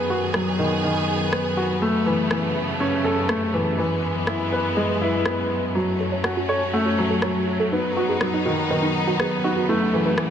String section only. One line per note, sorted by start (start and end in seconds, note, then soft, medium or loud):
0.00 7.68 F#2 medium
0.00 1.79 D#3 soft
0.00 3.74 B3 medium
0.00 1.80 G#4 medium
1.80 3.76 C#3 medium
1.80 3.76 A3 medium
3.77 5.73 E3 medium
3.77 5.73 G#3 medium
3.77 5.73 B3 medium
5.75 9.65 F#3 medium
5.75 7.70 A3 medium
5.75 7.70 C#4 medium
7.71 10.30 F#2 medium
7.71 10.30 B3 medium
7.71 9.66 D#4 medium
9.69 10.30 C#3 medium
9.69 10.30 A3 medium